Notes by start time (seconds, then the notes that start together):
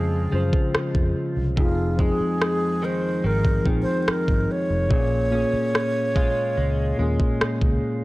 Already playing: F2 C#3 F3 G#3 C4 C#4 F4 G#4 C5, downlifter
0.31 F#2 C#3 F3 C#4 F4
0.35 C5
0.53 kick
0.74 muted fingered electric bass stroke, cross-stick
0.95 F2, kick
1.37 C2
1.56 F1 F2 F3 C4 D#4 F4, kick
1.60 G#4
1.97 F3 G#3 C4 D#4 G#4, kick
2.02 G#4
2.20 muted fingered electric bass stroke
2.42 cross-stick
2.82 D#3 G#3 C5
3.24 G#1 D#3 A#4
3.45 kick
3.64 A#1 D#3 F3 C4 D#4, kick
3.68 G#4
3.82 C5
4.02 C5
4.08 A#4, muted fingered electric bass stroke, cross-stick
4.28 G#1, kick
4.51 C#5
4.70 F1
4.89 A#1 A#2 A#3 C#4, kick
4.93 G#4
5.31 A#2 A#3 C#4
5.35 G#4
5.53 muted fingered electric bass stroke
5.75 cross-stick
6.16 G#3 C#4 F4, kick
6.57 C#2 G#3
6.98 D#2 A#2 G#3 A#3 C#4
7.02 G#4
7.20 kick
7.41 muted fingered electric bass stroke, cross-stick
7.61 C#2, kick